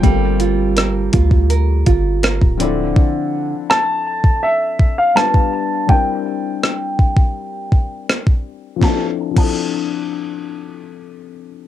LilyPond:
<<
  \new Staff \with { instrumentName = "Grand piano" } { \time 4/4 \key d \minor \tempo 4 = 82 g''8 r2. r8 | r4 a''4 e''8. f''16 a''4 | g''2. r4 | a''16 r8 a''2.~ a''16 | }
  \new Staff \with { instrumentName = "Nylon-string guitar" } { \time 4/4 \key d \minor g8 f'8 bes'8 f'8 bes'8 f'8 bes'8 d8 | r1 | r1 | r1 | }
  \new Staff \with { instrumentName = "Felt piano" } { \time 4/4 \key d \minor <g a bes c' f' a'>2.~ <g a bes c' f' a'>8 <f c' d' e' a'>8~ | <f c' d' e' a'>2. <g b d' f' b'>4 | <g c' d' e' bes'>1 | <f c' d' e' a'>16 r8 <f c' d' e' a'>2.~ <f c' d' e' a'>16 | }
  \new Staff \with { instrumentName = "808-style bass" } { \clef bass \time 4/4 \key d \minor g,,4. d,4 g,,8. d,,8. | r1 | r1 | r1 | }
  \new DrumStaff \with { instrumentName = "Drums" } \drummode { \time 4/4 <hh bd>8 hh8 <hh ss>8 <hh bd>16 bd16 hh8 <hh bd>8 <hh ss>16 bd16 hh8 | bd4 ss8. bd16 r8 bd8 ss16 bd8. | bd4 ss8 bd16 bd16 r8 bd8 ss16 bd8. | <bd sn>8. <cymc bd>16 r4 r4 r4 | }
>>